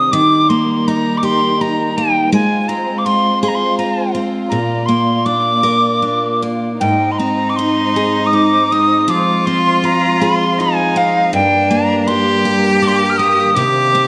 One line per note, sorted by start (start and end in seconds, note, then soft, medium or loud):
0.00 0.12 C3 medium
0.00 0.20 C4 soft
0.00 0.20 D4 soft
0.00 1.22 G4 medium
0.00 0.13 D#6 medium
0.12 2.33 D#3 medium
0.12 2.31 G3 medium
0.12 2.30 D#4 medium
0.12 2.31 A#4 medium
0.12 0.51 D6 medium
0.49 1.96 A#3 medium
0.49 0.89 C6 medium
0.88 1.60 D#4 medium
0.88 1.19 A#5 medium
1.18 1.26 D6 medium
1.23 2.39 G4 medium
1.23 1.63 C6 loud
1.61 2.40 D#4 medium
1.61 1.99 A#5 medium
1.97 2.40 A#3 medium
1.97 2.33 G5 medium
2.32 4.49 G#3 medium
2.32 4.48 G#3 medium
2.32 6.77 F4 medium
2.32 4.48 C5 medium
2.32 2.70 G#5 medium
2.68 4.13 C4 soft
2.68 3.00 A#5 medium
2.98 3.07 D6 medium
3.05 3.78 F4 medium
3.05 3.42 C6 medium
3.43 4.57 G#4 medium
3.43 3.50 C6 medium
3.48 3.56 A#5 medium
3.55 3.78 C6 medium
3.78 5.25 F4 soft
3.78 4.11 A#5 medium
4.15 4.57 C4 soft
4.49 6.81 A#2 medium
4.49 6.78 A#3 medium
4.49 6.77 D5 medium
4.49 4.87 A#5 medium
4.86 6.41 A#3 soft
4.86 5.27 C6 medium
5.25 6.01 D4 soft
5.25 6.42 D6 medium
5.63 6.88 A#4 soft
6.02 6.88 D4 soft
6.42 6.88 A#3 soft
6.80 9.09 G#2 medium
6.80 11.28 G#3 medium
6.80 9.06 D#4 soft
6.80 9.05 D#4 medium
6.80 11.28 C5 medium
6.80 7.13 G5 medium
7.11 7.20 C6 medium
7.18 8.72 C4 soft
7.18 7.51 A#5 medium
7.50 7.58 D6 medium
7.56 8.32 D#4 soft
7.56 8.28 C6 medium
7.96 10.21 G#4 soft
8.26 8.36 D#6 medium
8.33 9.15 D#4 soft
8.33 8.73 D6 medium
8.72 9.47 C4 soft
8.72 9.01 D#6 medium
9.01 9.11 D#6 medium
9.08 11.31 F3 medium
9.08 10.60 F4 medium
9.08 11.30 F4 medium
9.08 9.48 D6 medium
9.46 10.95 C4 soft
9.46 9.78 C6 medium
9.78 9.87 C6 medium
9.84 10.58 F4 soft
9.84 10.25 A#5 medium
10.21 11.39 G#4 medium
10.21 10.63 C6 medium
10.59 11.34 D#4 medium
10.59 11.40 F4 soft
10.59 10.99 G#5 medium
10.96 11.40 C4 medium
10.96 11.33 F5 medium
11.29 13.56 G2 medium
11.29 13.52 G3 medium
11.29 14.07 A#3 medium
11.29 12.08 D4 medium
11.29 13.52 A#4 medium
11.34 11.72 G5 medium
11.71 13.18 A#3 soft
11.71 12.09 A#5 medium
12.06 12.82 D4 medium
12.06 13.54 G4 loud
12.06 12.55 C6 medium
12.45 14.07 G4 medium
12.82 13.98 D4 soft
12.82 12.89 D6 medium
12.87 12.98 C6 medium
12.96 13.11 D6 medium
13.10 13.19 F6 medium
13.18 13.64 A#3 medium
13.18 13.57 D#6 medium
13.55 14.07 C3 medium
13.55 14.07 D#3 medium
13.55 14.07 G4 medium
13.55 14.07 C5 medium
13.55 14.07 D6 medium
13.95 14.07 C4 soft